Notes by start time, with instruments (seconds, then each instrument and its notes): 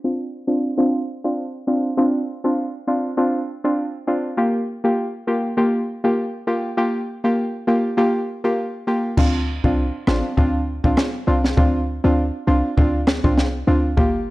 0.04 synth stab C4 D4 F4
0.47 synth stab C4 D4 F4
0.77 synth stab C4 D4 F4
1.24 synth stab C4 D4 F4
1.67 synth stab C4 D4 F4
1.97 synth stab C4 D4 F4
2.44 synth stab C4 D4 F4
2.87 synth stab C4 D4 F4
3.17 synth stab C4 D4 F4
3.64 synth stab C4 D4 F4
4.07 synth stab C4 D4 F4
4.37 synth stab A#3 F4 G4
4.84 synth stab A#3 F4 G4
5.27 synth stab A#3 F4 G4
5.57 synth stab A#3 F4 G4
6.04 synth stab A#3 F4 G4
6.47 synth stab A#3 F4 G4
6.77 synth stab A#3 F4 G4
7.24 synth stab A#3 F4 G4
7.67 synth stab A#3 F4 G4
7.97 synth stab A#3 F4 G4
8.44 synth stab A#3 F4 G4
8.87 synth stab A#3 F4 G4
9.17 808-style bass D2, synth stab C4 D4 F4, kick, crash
9.64 808-style bass C2, synth stab C4 D4 F4, kick
10.07 808-style bass A1, synth stab C4 D4 F4, cross-stick, snare
10.37 808-style bass D2, synth stab C4 D4 F4, kick
10.84 808-style bass C2, synth stab C4 D4 F4, kick
10.97 cross-stick, snare
11.27 808-style bass C2, synth stab C4 D4 F4
11.44 snare
11.57 808-style bass D2, synth stab C4 D4 F4, kick
12.04 808-style bass D2, synth stab C4 D4 F4
12.47 808-style bass C2, synth stab C4 D4 F4
12.77 808-style bass D2, synth stab C4 D4 F4, kick
13.07 cross-stick, snare
13.24 808-style bass C2, synth stab C4 D4 F4, kick
13.38 snare
13.67 808-style bass D2, synth stab C4 D4 F4
13.97 808-style bass G1, synth stab A#3 F4 G4, kick